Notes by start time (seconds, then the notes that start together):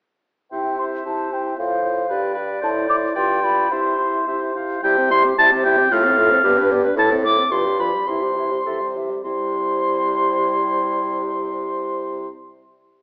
0.51 C3 E4 C5 E5 G5
0.79 E4 C5 C6
1.05 C3 E4 C5 A5
1.32 E4 C5 G5
1.58 A2 F4 C5 F5
1.84 F4 C5
2.09 G2 G4 B4 D5
2.34 G4 B4
2.61 A2 E4 C5 A5
2.87 E4 C5 D6
3.15 G2 F4 D5 G5 C6
3.42 F4 D5 B5
3.70 C3 E4 C5 E5 C6
3.98 E4 C5
4.27 C3 E4 C5 E5
4.55 E4 C5 F5
4.83 C3 G3 E4 E5 G5
4.97 C4 G4 C5
5.10 G3 E4 E5 C6
5.24 C4 G4 C5
5.37 C3 G3 E4 E5 A5
5.50 C4 G4 C5
5.64 G3 E4 E5 G5
5.77 C4 G4 C5
5.91 A2 A3 F4 A4 F5
6.04 C4 A4 C5
6.18 A3 F4 A4
6.30 C4 A4 C5
6.43 G2 B3 G4 D5
6.58 D4 B4
6.71 B3 G4 D5
6.84 D4 B4
6.96 A2 A3 E4 A4 A5
7.10 C4 A4 C5
7.24 A3 E4 A4 D6
7.37 C4 A4 C5
7.51 G2 F3 F4 B4 C6
7.66 G3 G4 D5
7.79 F3 F4 B4 B5
7.93 G3 G4 D5
8.07 C3 E3 E4 E5 C6
8.22 G3 G4 C5
8.36 E3 E4 E5
8.51 G3 G4 C5
8.65 C3 E3 A4 E5
8.81 G3 C5
8.95 E3 G4 E5
9.10 G3 C5
9.24 C3 G3 E4 C5 C6